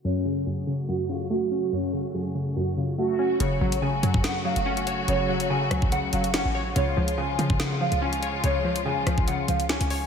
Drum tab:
HH |----------------|----------------|x--x--x-x--x-xx-|x--x--x-x-xxx---|
SD |----------------|----------------|--------o-------|------r-----o---|
BD |----------------|----------------|-------o--------|-------o--------|

HH |x--x--x-x--x-xx-|x--x--x-x-xxxxo-|
SD |--------o-------|------r-----o---|
BD |-------o--------|-------o--------|